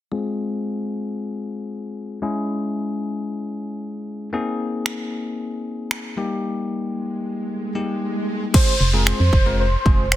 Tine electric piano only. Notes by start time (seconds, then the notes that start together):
0.12 G#3 C4 F4 G#4
2.22 G#3 C#4 E4 G#4
4.33 A#3 C4 D#4 G#4
6.17 G3 A#3 D#4 G4
7.75 G3 A#3 D#4 G4
8.54 G#3 C4 F4 G#4
8.93 G#3 C4 F4 G#4
9.46 G#3 C4 F4 A#4
9.85 G#3 C4 F4 G#4